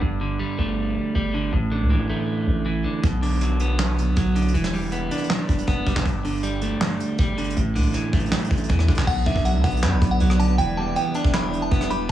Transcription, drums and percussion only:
3.04 kick, closed hi-hat
3.23 open hi-hat
3.41 closed hi-hat
3.60 closed hi-hat
3.79 snare, clap
3.98 closed hi-hat
4.16 kick, closed hi-hat
4.36 closed hi-hat
4.42 closed hi-hat
4.48 closed hi-hat
4.55 closed hi-hat
4.64 snare
4.74 open hi-hat
4.92 closed hi-hat
5.11 closed hi-hat
5.17 closed hi-hat
5.24 closed hi-hat
5.30 snare, clap
5.49 kick, closed hi-hat
5.58 closed hi-hat
5.67 kick, closed hi-hat
5.87 kick, closed hi-hat
5.96 kick, snare, clap
6.06 kick, closed hi-hat
6.25 open hi-hat
6.43 closed hi-hat
6.62 closed hi-hat
6.81 snare, clap
7.00 closed hi-hat
7.18 kick, closed hi-hat
7.38 closed hi-hat
7.44 closed hi-hat
7.50 closed hi-hat
7.57 closed hi-hat
7.76 open hi-hat
7.94 closed hi-hat
8.13 kick, closed hi-hat
8.19 closed hi-hat
8.26 closed hi-hat
8.32 snare, clap
8.38 closed hi-hat
8.45 closed hi-hat
8.51 kick, closed hi-hat
8.57 closed hi-hat
8.63 closed hi-hat
8.69 kick, closed hi-hat
8.79 cross-stick
8.88 kick, closed hi-hat
8.95 kick, snare, clap, closed hi-hat
9.07 kick, crash
9.26 kick
9.36 kick
9.45 closed hi-hat
9.64 kick, closed hi-hat
9.70 closed hi-hat
9.77 closed hi-hat
9.83 snare, clap
10.02 kick, closed hi-hat
10.20 closed hi-hat
10.30 cross-stick
10.40 closed hi-hat
10.58 closed hi-hat
10.96 closed hi-hat
11.14 closed hi-hat
11.24 kick
11.34 snare, clap
11.53 closed hi-hat
11.72 kick, closed hi-hat
11.81 cross-stick, closed hi-hat
11.90 closed hi-hat

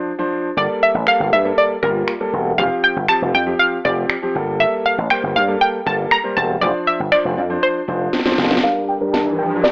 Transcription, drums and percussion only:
1.07 finger snap
2.08 finger snap
3.09 finger snap
4.10 finger snap
5.10 finger snap
6.11 finger snap
7.12 finger snap
8.13 snare
8.19 snare
8.26 snare
8.32 snare
8.38 snare
8.45 snare
8.51 snare
8.57 snare
8.63 snare
9.14 snare
9.64 snare

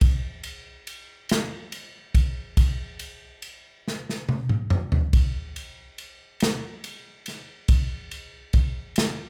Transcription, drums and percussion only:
0.01 kick, ride
0.43 ride
0.87 ride
1.29 snare, ride
1.72 ride
2.15 kick, ride
2.57 kick, ride
2.99 ride
3.42 ride
3.88 snare
4.09 snare
4.29 high tom
4.49 mid tom
4.70 mid tom
4.92 floor tom
5.13 kick, ride
5.56 ride
5.98 ride
6.40 snare, ride
6.84 ride
7.26 snare, ride
7.68 kick, ride
8.11 ride
8.53 kick, ride
8.96 snare, ride

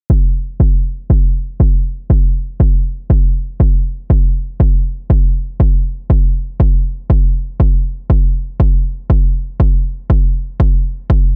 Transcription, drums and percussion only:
0.10 kick
0.60 kick
1.10 kick
1.60 kick
2.10 kick
2.60 kick
3.10 kick
3.60 kick
4.10 kick
4.60 kick
5.10 kick
5.60 kick
6.10 kick
6.60 kick
7.10 kick
7.60 kick
8.10 kick
8.60 kick
9.10 kick
9.60 kick
10.10 kick
10.60 kick
11.10 kick

